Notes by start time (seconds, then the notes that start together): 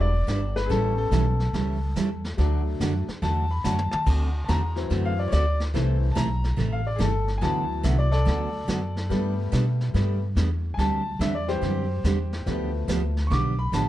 Already playing: E1 G3 D4 F#4
0.01 D5
0.27 G1 G3 D4 E4 B4, snare, hi-hat pedal
0.56 B4, snare
0.66 A1 E3 G3 B3 G#4
0.70 C#4 E4 A4, brush sweep, snare
0.98 A4
1.11 B1 E3 G3 C#4 E4 A4, snare, hi-hat pedal
1.40 snare
1.53 C#2 E3 G3 C#4 E4 A4, brush sweep, snare
1.96 E2 E3 G3 C#4 E4 A4, snare, hi-hat pedal
2.24 snare
2.37 D2 D3 F#3 A3 D4 F#4, brush sweep, snare
2.80 F#2 D3 F#3 A3 D4 F#4, snare, hi-hat pedal
3.08 muted upright bass stroke, snare
3.22 E2 D3 F#3 A3 D4 F#4 A5, brush sweep, snare
3.51 B5
3.64 F#2 D3 F#3 A3 D4 F#4 A5, snare, hi-hat pedal
3.78 mid tom
3.91 A5, muted upright bass stroke, mid tom
4.06 D2 D3 A3 C4 F#4 A4, brush sweep, kick, snare, crash
4.44 D3 A5
4.49 E2 A3 C4 F#4 A4 A#5, snare, hi-hat pedal
4.76 E3 F#3 C4, snare
4.90 F#2 D3 A3 C4 F#4 A4, brush sweep, snare
5.05 F5
5.19 D5
5.28 D3 C#5
5.32 D2 A3 C4 F#4 A4 D5, snare, hi-hat pedal
5.60 snare
5.74 C2 C3 E3 A3 C4 E4 A4, brush sweep, snare
6.12 C3 A3 A5
6.16 B1 E3 E4 A4 A#5, snare, hi-hat pedal
6.44 snare
6.57 A1 C3 E3 A3 E4 A4, brush sweep, snare
6.72 F5
6.87 D5
6.96 C3 E3 A3 E4 G#4
7.00 G1 A4, snare, hi-hat pedal
7.28 snare
7.38 D3 E3 F#3 B3 G#5
7.42 D2 B3 F#4 A4 A5, brush sweep, snare
7.83 C2 D3 F#3 B3 F#4 A4 E5, snare, hi-hat pedal
7.99 D5
8.12 A4 D5, snare
8.25 D2 D3 F#3 B3 F#4 A4, brush sweep, snare
8.68 F#2 D3 F#3 B3 F#4 A4, snare, hi-hat pedal
8.97 snare
9.09 G2 G3 A3 B3 D4 A4, brush sweep, snare
9.52 B2 G3 B3 D4 A4, snare, hi-hat pedal
9.80 snare
9.94 G2 G3 A3 B3 D4 A4, brush sweep, snare
10.36 E2 G3 B3 D4 A4, snare, hi-hat pedal
10.74 D2 G#5
10.78 D3 G3 C4 D4 G4 A5, brush sweep, snare
11.19 E2 D3 G3 C4 D4 G4 E5, snare, hi-hat pedal
11.35 D5
11.48 E3 G3 C4 G4 C5, snare
11.62 F#2 D3 G3 C4 D4 G4, brush sweep, snare
12.04 E2 D3 G3 C4 D4 G4, snare, hi-hat pedal
12.33 snare
12.46 D2 D3 F3 A3 B3 D4 G4, brush sweep, snare
12.88 D2 D3 F3 B3 D4 G4, snare, hi-hat pedal
13.17 snare
13.27 B1 D3 F3 C#6
13.31 B3 D4 G4 D6, brush sweep, snare
13.59 B5
13.72 A1 D3 F3 B3 D4 G4 A5, snare, hi-hat pedal